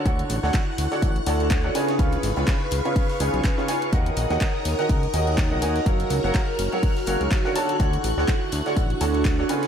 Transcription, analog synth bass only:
0.06 D2
0.30 A1
0.43 D2
0.78 D2
1.02 A1
1.27 D2
1.99 C#2
2.23 G#1
2.37 C#2
2.72 C#2
3.20 C#2
3.34 B1
3.93 D#2
4.17 A#1
4.30 D#2
4.65 D#2
4.89 C#2
5.14 D#2
5.51 A#1
5.62 D#2
5.86 F#1
6.10 C#2
6.24 F#1
6.59 F#1
7.07 F#1
7.21 C#2
7.80 D2
8.04 A1
8.18 D2
8.52 D2
8.77 A1
9.01 D2

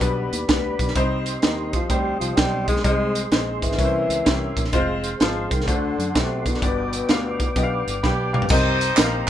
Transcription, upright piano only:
0.00 G3 B3 D4 B4
0.48 G3 B3 D4 B4
0.95 C3 G3 C4 D#4 C5
1.43 G3 C4 D#4 D#5
1.89 G3 C4 D#4 C5
2.37 G3 C4 D#4 C5
2.84 C3 G#3 C4 D#4 C5
3.31 G#3 C4 D#4 C5
3.78 C3 A#3 C#4 E4 B4
3.85 C5
4.25 A#3 C#4 E4 G4
4.72 G#3 C4 F4 C5
5.20 G3 C4 F4 C5
5.25 G#3
5.67 D3 A3 D4 F4 C5
5.74 F#4
6.14 A3 D4 F#4 D5
6.62 G2 B3 D4 G4 D5
7.09 B3 D4 G4 F5
7.56 B3 D4 G4 D#5
7.63 F5
8.03 F5 G5 B5
8.33 D5 F5 G5
8.49 C3 C4 D#4 G4 A#4 D#5
8.96 C4 D#4 G4 A#4 D#5
9.04 F5

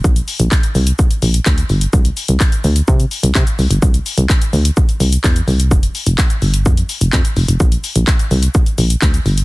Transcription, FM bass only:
0.04 A#1
0.40 A#1
0.75 C2
1.23 A#1
1.46 D2
1.70 G1
1.93 C2
2.29 C2
2.64 D2
2.88 C3
3.23 C2
3.35 C3
3.59 C2
3.70 G1
3.82 C2
4.18 C2
4.53 D2
5.00 C2
5.24 E2
5.48 C2
5.71 F1
6.07 F1
6.42 G1
6.66 F2
7.01 F1
7.13 F2
7.37 F1
7.48 F1
7.60 A#1
7.96 A#1
8.31 C2
8.78 A#1
9.02 D2
9.26 G1

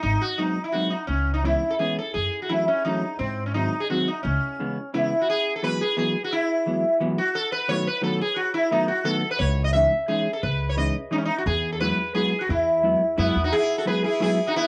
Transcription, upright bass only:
0.03 G#1
1.09 C#2
2.15 F#2
3.19 G#2
4.25 C#2
9.40 C#2
10.43 C#2
11.46 E2
12.49 E2
13.18 F#2
13.36 E2

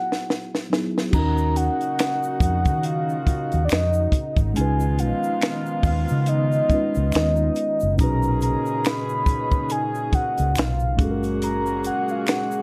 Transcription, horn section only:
1.12 A#2 F#3 D#4 F#4
4.55 B2 F3 G#3 F4
7.98 D#3 G#3 C#4 G#4
10.98 C#3 F#3 A#3 F#4

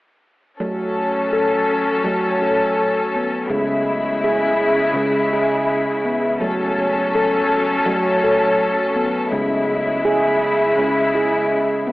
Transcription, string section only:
0.59 F#3 C#4 A4
3.48 C#3 G#3 E4
6.42 F#3 C#4 A4
9.33 C#3 G#3 E4

